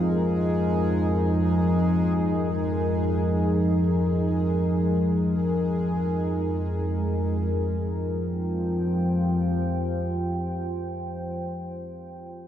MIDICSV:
0, 0, Header, 1, 4, 480
1, 0, Start_track
1, 0, Key_signature, -4, "minor"
1, 0, Tempo, 500000
1, 11978, End_track
2, 0, Start_track
2, 0, Title_t, "Ambient pad"
2, 0, Program_c, 0, 92
2, 0, Note_on_c, 0, 41, 66
2, 0, Note_on_c, 0, 56, 82
2, 0, Note_on_c, 0, 63, 80
2, 0, Note_on_c, 0, 70, 66
2, 7217, Note_off_c, 0, 70, 0
2, 7221, Note_off_c, 0, 63, 0
2, 7225, Note_off_c, 0, 56, 0
2, 7231, Note_on_c, 0, 65, 72
2, 7232, Note_off_c, 0, 41, 0
2, 7375, Note_on_c, 0, 72, 70
2, 7527, Note_on_c, 0, 79, 71
2, 10929, Note_off_c, 0, 65, 0
2, 11073, Note_off_c, 0, 72, 0
2, 11225, Note_off_c, 0, 79, 0
2, 11978, End_track
3, 0, Start_track
3, 0, Title_t, "Synth texture"
3, 0, Program_c, 1, 99
3, 0, Note_on_c, 1, 56, 79
3, 0, Note_on_c, 1, 68, 75
3, 7244, Note_off_c, 1, 56, 0
3, 7249, Note_off_c, 1, 68, 0
3, 11978, End_track
4, 0, Start_track
4, 0, Title_t, "Synth drone"
4, 0, Program_c, 2, 95
4, 0, Note_on_c, 2, 41, 72
4, 0, Note_on_c, 2, 53, 73
4, 7222, Note_off_c, 2, 41, 0
4, 7222, Note_off_c, 2, 53, 0
4, 7233, Note_on_c, 2, 53, 76
4, 7234, Note_on_c, 2, 41, 73
4, 10931, Note_off_c, 2, 53, 0
4, 10932, Note_off_c, 2, 41, 0
4, 11978, End_track
0, 0, End_of_file